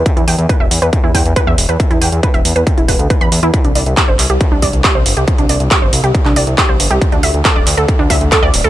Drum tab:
HH |xxoxx-oxx-oxx-ox|xxoxxxoxxxoxxxox|xxoxx-o-x-oxx-ox|xxoxx-oxx-oxx-ox|
CP |----------------|----------------|----x-x-----x---|----x----x--x---|
BD |o---o---o-o-o---|o---o---o-o-o---|o---o---o-o-o---|o---o---o---o---|

HH |xxoxx-oxx-oxx-ox|
CP |----x-x-----x---|
BD |o---o---o-o-o---|